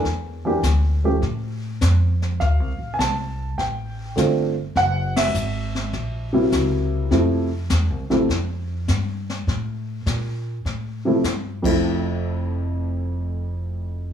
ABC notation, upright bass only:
X:1
M:4/4
L:1/8
Q:"Swing" 1/4=102
K:F
V:1 name="Upright bass" clef=bass
E,,2 D,,2 A,,2 F,,2 | (3D,, C,, A,,, C,,2 A,,,2 G,,,2 | _G,,,2 _A,,,2 B,,,2 _D,,2 | F,,2 (3E,, C,, A,,, F,,2 G,,2 |
A,,2 B,,2 A,,2 G,, F,,,- | F,,,8 |]